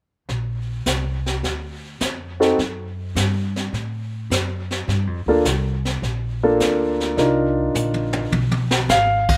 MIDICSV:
0, 0, Header, 1, 4, 480
1, 0, Start_track
1, 0, Key_signature, -2, "major"
1, 0, Tempo, 574163
1, 241, Time_signature, 4, 2, 24, 8
1, 7837, End_track
2, 0, Start_track
2, 0, Title_t, "Grand piano"
2, 0, Program_c, 0, 0
2, 2006, Note_on_c, 0, 60, 53
2, 2008, Note_on_c, 0, 63, 48
2, 2009, Note_on_c, 0, 66, 45
2, 2012, Note_on_c, 0, 69, 57
2, 2143, Note_off_c, 0, 60, 0
2, 2144, Note_off_c, 0, 63, 0
2, 2145, Note_off_c, 0, 66, 0
2, 2146, Note_off_c, 0, 69, 0
2, 4415, Note_on_c, 0, 58, 53
2, 4418, Note_on_c, 0, 62, 48
2, 4421, Note_on_c, 0, 65, 54
2, 4424, Note_on_c, 0, 69, 60
2, 4548, Note_off_c, 0, 58, 0
2, 4549, Note_off_c, 0, 62, 0
2, 4551, Note_off_c, 0, 65, 0
2, 4552, Note_off_c, 0, 69, 0
2, 5378, Note_on_c, 0, 62, 50
2, 5379, Note_on_c, 0, 58, 56
2, 5380, Note_on_c, 0, 65, 52
2, 5381, Note_on_c, 0, 69, 59
2, 5974, Note_off_c, 0, 58, 0
2, 5974, Note_off_c, 0, 62, 0
2, 5975, Note_off_c, 0, 65, 0
2, 5975, Note_off_c, 0, 69, 0
2, 5995, Note_on_c, 0, 62, 51
2, 5998, Note_on_c, 0, 63, 43
2, 6003, Note_on_c, 0, 65, 44
2, 6006, Note_on_c, 0, 70, 53
2, 6957, Note_off_c, 0, 62, 0
2, 6958, Note_off_c, 0, 63, 0
2, 6961, Note_off_c, 0, 65, 0
2, 6962, Note_off_c, 0, 70, 0
2, 7439, Note_on_c, 0, 77, 85
2, 7837, Note_off_c, 0, 77, 0
2, 7837, End_track
3, 0, Start_track
3, 0, Title_t, "Upright bass"
3, 0, Program_c, 1, 32
3, 239, Note_on_c, 1, 34, 67
3, 706, Note_off_c, 1, 34, 0
3, 719, Note_on_c, 1, 36, 64
3, 1186, Note_off_c, 1, 36, 0
3, 1197, Note_on_c, 1, 38, 64
3, 1665, Note_off_c, 1, 38, 0
3, 1681, Note_on_c, 1, 41, 66
3, 2147, Note_off_c, 1, 41, 0
3, 2158, Note_on_c, 1, 42, 67
3, 2625, Note_off_c, 1, 42, 0
3, 2636, Note_on_c, 1, 43, 68
3, 3104, Note_off_c, 1, 43, 0
3, 3116, Note_on_c, 1, 45, 66
3, 3584, Note_off_c, 1, 45, 0
3, 3597, Note_on_c, 1, 42, 68
3, 4065, Note_off_c, 1, 42, 0
3, 4077, Note_on_c, 1, 43, 71
3, 4239, Note_off_c, 1, 43, 0
3, 4239, Note_on_c, 1, 41, 47
3, 4394, Note_off_c, 1, 41, 0
3, 4399, Note_on_c, 1, 38, 54
3, 4549, Note_off_c, 1, 38, 0
3, 4556, Note_on_c, 1, 36, 71
3, 5024, Note_off_c, 1, 36, 0
3, 5034, Note_on_c, 1, 34, 68
3, 5503, Note_off_c, 1, 34, 0
3, 5520, Note_on_c, 1, 38, 67
3, 5986, Note_off_c, 1, 38, 0
3, 5995, Note_on_c, 1, 36, 75
3, 6463, Note_off_c, 1, 36, 0
3, 6475, Note_on_c, 1, 34, 75
3, 6942, Note_off_c, 1, 34, 0
3, 6953, Note_on_c, 1, 35, 66
3, 7421, Note_off_c, 1, 35, 0
3, 7430, Note_on_c, 1, 32, 68
3, 7837, Note_off_c, 1, 32, 0
3, 7837, End_track
4, 0, Start_track
4, 0, Title_t, "Drums"
4, 240, Note_on_c, 9, 25, 40
4, 240, Note_on_c, 9, 38, 31
4, 324, Note_off_c, 9, 38, 0
4, 718, Note_on_c, 9, 44, 51
4, 720, Note_on_c, 9, 38, 45
4, 802, Note_off_c, 9, 44, 0
4, 804, Note_off_c, 9, 38, 0
4, 1055, Note_on_c, 9, 38, 28
4, 1139, Note_off_c, 9, 38, 0
4, 1201, Note_off_c, 9, 25, 0
4, 1201, Note_on_c, 9, 25, 38
4, 1201, Note_on_c, 9, 38, 30
4, 1285, Note_off_c, 9, 38, 0
4, 1676, Note_on_c, 9, 44, 49
4, 1679, Note_on_c, 9, 38, 44
4, 1760, Note_off_c, 9, 44, 0
4, 1763, Note_off_c, 9, 38, 0
4, 2018, Note_on_c, 9, 38, 27
4, 2101, Note_off_c, 9, 38, 0
4, 2164, Note_off_c, 9, 25, 0
4, 2164, Note_on_c, 9, 25, 38
4, 2164, Note_on_c, 9, 38, 31
4, 2248, Note_off_c, 9, 38, 0
4, 2643, Note_on_c, 9, 44, 42
4, 2645, Note_on_c, 9, 38, 47
4, 2726, Note_off_c, 9, 44, 0
4, 2729, Note_off_c, 9, 38, 0
4, 2977, Note_on_c, 9, 38, 29
4, 3060, Note_off_c, 9, 38, 0
4, 3126, Note_off_c, 9, 25, 0
4, 3126, Note_on_c, 9, 25, 37
4, 3126, Note_on_c, 9, 38, 32
4, 3210, Note_off_c, 9, 38, 0
4, 3604, Note_on_c, 9, 44, 51
4, 3607, Note_on_c, 9, 38, 44
4, 3688, Note_off_c, 9, 44, 0
4, 3691, Note_off_c, 9, 38, 0
4, 3934, Note_on_c, 9, 38, 27
4, 4018, Note_off_c, 9, 38, 0
4, 4086, Note_off_c, 9, 25, 0
4, 4086, Note_on_c, 9, 25, 44
4, 4086, Note_on_c, 9, 38, 32
4, 4170, Note_off_c, 9, 38, 0
4, 4556, Note_on_c, 9, 44, 52
4, 4559, Note_on_c, 9, 38, 50
4, 4640, Note_off_c, 9, 44, 0
4, 4642, Note_off_c, 9, 38, 0
4, 4892, Note_on_c, 9, 38, 28
4, 4975, Note_off_c, 9, 38, 0
4, 5042, Note_off_c, 9, 25, 0
4, 5042, Note_on_c, 9, 25, 40
4, 5042, Note_on_c, 9, 38, 33
4, 5125, Note_off_c, 9, 38, 0
4, 5518, Note_on_c, 9, 44, 45
4, 5520, Note_on_c, 9, 38, 45
4, 5601, Note_off_c, 9, 44, 0
4, 5604, Note_off_c, 9, 38, 0
4, 5853, Note_on_c, 9, 38, 29
4, 5936, Note_off_c, 9, 38, 0
4, 5999, Note_off_c, 9, 25, 0
4, 5999, Note_on_c, 9, 25, 36
4, 5999, Note_on_c, 9, 38, 34
4, 6083, Note_off_c, 9, 38, 0
4, 6478, Note_on_c, 9, 44, 50
4, 6481, Note_on_c, 9, 47, 36
4, 6562, Note_off_c, 9, 44, 0
4, 6564, Note_off_c, 9, 47, 0
4, 6637, Note_on_c, 9, 48, 37
4, 6720, Note_off_c, 9, 48, 0
4, 6795, Note_on_c, 9, 43, 53
4, 6878, Note_off_c, 9, 43, 0
4, 6957, Note_on_c, 9, 48, 48
4, 7041, Note_off_c, 9, 48, 0
4, 7117, Note_on_c, 9, 48, 51
4, 7201, Note_off_c, 9, 48, 0
4, 7279, Note_on_c, 9, 38, 61
4, 7363, Note_off_c, 9, 38, 0
4, 7432, Note_on_c, 9, 44, 50
4, 7434, Note_on_c, 9, 38, 48
4, 7515, Note_off_c, 9, 44, 0
4, 7518, Note_off_c, 9, 38, 0
4, 7764, Note_on_c, 9, 49, 51
4, 7766, Note_on_c, 9, 36, 62
4, 7837, Note_off_c, 9, 25, 0
4, 7837, Note_off_c, 9, 36, 0
4, 7837, Note_off_c, 9, 49, 0
4, 7837, End_track
0, 0, End_of_file